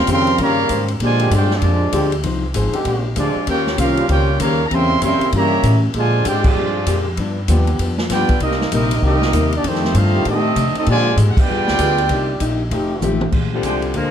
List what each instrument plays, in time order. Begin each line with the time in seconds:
0.07 upright bass F2, trombone section C#3 G3 C4 F4, steel-string acoustic guitar D#3 C#4 G4 C5, kick, hi-hat pedal, ride
0.12 trumpet section A#4 F5 G5 C6
0.27 ride
0.37 upright bass G2, trombone section C#3 G3 A#3, steel-string acoustic guitar D#3 C#4 G4 C5, kick, ride
0.42 trumpet section G4 C#5 F5 A#5
0.69 upright bass G#2, steel-string acoustic guitar D#3 C#4 G4 C5, kick, hi-hat pedal, ride
0.88 ride
0.99 steel-string acoustic guitar A#2 G#3 D4 G4, upright bass A#2, trombone section D3 F3 G#3, kick, ride
1.04 trumpet section F4 C5 D5 G#5
1.20 trombone section D3 G#3 C4 G4, ride
1.31 upright bass G2, steel-string acoustic guitar A#2 G#3 D4 G4, trombone section G#3 D4 G4, kick, hi-hat pedal, ride
1.35 trumpet section F4 C5 D5 G5
1.51 trombone section F3 G#3 D4, trumpet section G#4, snare
1.55 trumpet section C4 F4 D5
1.61 upright bass F2, steel-string acoustic guitar A#2 G#3 D4 G4, kick, ride
1.92 upright bass D2, steel-string acoustic guitar A#2 G#3 D4 G4, trombone section D3 G#3 C4 G4, kick, hi-hat pedal, ride
2.12 ride
2.23 upright bass C2, steel-string acoustic guitar F3 D#4 G#4 C5, kick, ride
2.54 upright bass G#1, steel-string acoustic guitar F3 D#4 G#4 C5, kick, hi-hat pedal, ride
2.73 trombone section D3 G#3 C4 G4, muted upright bass stroke, ride
2.85 upright bass A#1, steel-string acoustic guitar A#2 G#3 D4 G4, kick, ride
3.16 upright bass D2, steel-string acoustic guitar A#2 G#3 D4 G4, trombone section F3 G#3 D4, trumpet section C4 F4 G#4 D5, kick, hi-hat pedal, ride
3.35 muted upright bass stroke
3.46 upright bass D#2, steel-string acoustic guitar D#3 C#4 G4 C5, trombone section A#3 C#4 G4, trumpet section F4 A#4 C#5 G5, kick, ride
3.67 snare
3.77 upright bass C2, steel-string acoustic guitar D#3 C#4 G4 C5, trombone section A#3 C#4 F4, trumpet section C#4 G4 A#4 F5, kick, hi-hat pedal, ride
3.97 trombone section C#3 G3 C4 F4, ride
4.07 upright bass C#2, steel-string acoustic guitar D#3 C#4 G4 C5, trombone section A#3 C#4 G4, trumpet section F4 A#4 C#5 G5, kick, ride
4.39 upright bass D#2, trombone section C#3 G3 A#3, steel-string acoustic guitar D#3 C#4 G4 C5, trumpet section G4 C#5 F5 A#5, kick, hi-hat pedal, ride
4.67 upright bass E2, trombone section C#3 G3 C4, steel-string acoustic guitar E3 A#3, trumpet section A#5, kick, ride
4.72 steel-string acoustic guitar C#4 G4, trumpet section A#4 E5 G5 C6
5.00 upright bass F#2, trombone section C#3 G3 A#3 C4 E4, steel-string acoustic guitar E3 A#3 C#4, kick, hi-hat pedal, ride
5.04 steel-string acoustic guitar G4, trumpet section A#4 E5 G5 C6
5.20 muted upright bass stroke, ride
5.32 upright bass G2, trombone section C#3 G3 A#3, steel-string acoustic guitar E3 A#3 C#4 G4, trumpet section C#5, kick, ride
5.36 trumpet section G4 E5 A#5
5.63 upright bass A2, steel-string acoustic guitar E3 A#3 C#4 G4, kick, hi-hat pedal, ride
5.93 steel-string acoustic guitar A#2 G#3 D4 G4, upright bass A#2, trombone section D3 F3 G#3, kick, ride
5.98 trumpet section F4 C5 D5 G#5
6.25 upright bass G#2, steel-string acoustic guitar A#2 G#3 D4 G4, trombone section D3 G#3 C4 D4 G4, kick, hi-hat pedal, ride
6.29 trumpet section F4 C5 D5 G5
6.44 trombone section F3 D4 G#4, kick, crash
6.49 trumpet section C4 F4 G#4 D5
6.55 upright bass G2, steel-string acoustic guitar A#2 G#3 D4
6.59 steel-string acoustic guitar G4
6.86 upright bass F2, steel-string acoustic guitar A#2 G#3 D4 G4, kick, hi-hat pedal, ride
7.17 steel-string acoustic guitar G2 F3 B3 D4, upright bass G2, kick, ride
7.48 upright bass D#2, steel-string acoustic guitar G2 F3 B3 D4, trombone section F3 B3 D4 G4, kick, hi-hat pedal, ride
7.67 ride
7.79 upright bass F2, steel-string acoustic guitar G2 F3 B3 D4, kick, ride
7.98 snare
8.10 upright bass G2, steel-string acoustic guitar G2 F3 B3 D4, trombone section B3 D4 G4, trumpet section F4 B4 D5 G5, kick, snare, hi-hat pedal, ride
8.29 muted upright bass stroke, kick, ride
8.40 upright bass C2, steel-string acoustic guitar C3 G3 A#3 D#4, trombone section G3 A#3 D#4, trumpet section C4 G4 A#4 D#5, kick, ride
8.51 snare
8.61 snare
8.71 upright bass A#1, steel-string acoustic guitar C3 G3 A#3 D#4, trombone section G3 A#3 D#4, trumpet section C4 G4 A#4 D#5, kick, hi-hat pedal, ride
8.91 ride
9.01 upright bass C2, steel-string acoustic guitar C3 G3 A#3 D#4, trombone section D#3 G3 A#3 C4 D#4 G4, kick
9.06 trumpet section C4 G4 A#4 D#5
9.22 snare
9.32 upright bass D#2, steel-string acoustic guitar C3 G3 A#3 D#4, kick, hi-hat pedal, ride
9.52 trombone section D4, trumpet section D#4 G4 D5, ride
9.56 trumpet section A#3
9.63 steel-string acoustic guitar F2 D#3 A3 D4, upright bass F2, trombone section D#3 A3 C4, kick, ride
9.67 trumpet section A3 D#4 G4 C5
9.75 snare
9.85 snare
9.94 steel-string acoustic guitar F2 D#3 A3 D4, upright bass G2, trombone section A3 C4 F4, trumpet section D#4 A4 C5 F5, kick, hi-hat pedal, ride
10.13 trombone section D#3 A3 D4 G4
10.25 steel-string acoustic guitar F2 D#3 A3 D4, upright bass A2, trombone section A3 C4 D#4, kick, ride
10.30 trumpet section C4 G4 A4 D#5
10.56 steel-string acoustic guitar F2 D#3 A3 D4, upright bass C3, kick, hi-hat pedal, ride
10.75 trombone section A3 C4 D#4, trumpet section C4 G4 A4 D#5, muted upright bass stroke, ride
10.86 steel-string acoustic guitar A#2 G#3 D4, upright bass A#2, trombone section D3 F3 G#3 C4 G#4, trumpet section F4 C5 D5 G#5, kick, ride
10.90 trombone section G#3, steel-string acoustic guitar G4
11.17 upright bass G#2, steel-string acoustic guitar A#2 G#3 D4 G4, kick, hi-hat pedal, ride
11.29 trumpet section F#5
11.37 trombone section B3 D4 G4, trumpet section F4 B4 D5 G5, kick, crash
11.48 upright bass G2, steel-string acoustic guitar G3 B3 F4 G#4
11.58 upright bass F2
11.68 upright bass D2, snare
11.79 upright bass D2, trombone section F3 G#3 B3 G4, steel-string acoustic guitar G3 B3 F4 G#4, kick, hi-hat pedal, ride
11.98 ride
12.09 upright bass C2, steel-string acoustic guitar C3 A#3 D#4 G4, kick, ride
12.40 upright bass A#1, steel-string acoustic guitar C3 A#3 D#4 G4, kick, hi-hat pedal, ride
12.71 upright bass F1, steel-string acoustic guitar F3 A3 D#4 G4, trombone section F3 A3 D#4 G4, kick, ride
13.00 upright bass A1, steel-string acoustic guitar F3 A3 D#4 G4, hi-hat pedal, mid tom
13.21 mid tom
13.32 upright bass A#1, steel-string acoustic guitar A#2 G#3 D4 G4, kick, crash
13.54 saxophone section C3 D3 F3 G3
13.63 upright bass C2, steel-string acoustic guitar A#2 G#3 D4 G4, trumpet section D4 G#4 C5 G5, kick, hi-hat pedal, ride
13.82 ride
13.94 upright bass D2, steel-string acoustic guitar A#2 G#3 D4 G4, saxophone section D3 F3 G#3 A#3, kick, ride